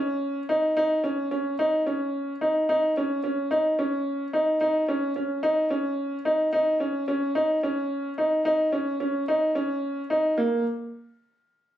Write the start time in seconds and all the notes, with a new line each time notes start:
Already playing: C#4
0.49 D#4
0.77 D#4
1.04 C#4
1.31 C#4
1.59 D#4
1.86 C#4
2.41 D#4
2.69 D#4
2.97 C#4
3.24 C#4
3.51 D#4
3.79 C#4
4.33 D#4
4.61 D#4
4.88 C#4
5.16 C#4
5.43 D#4
5.70 C#4
6.25 D#4
6.53 D#4
6.80 C#4
7.08 C#4
7.35 D#4
7.63 C#4
8.18 D#4
8.45 D#4
8.72 C#4
9.00 C#4
9.28 D#4
9.55 C#4
10.10 D#4
10.38 A#3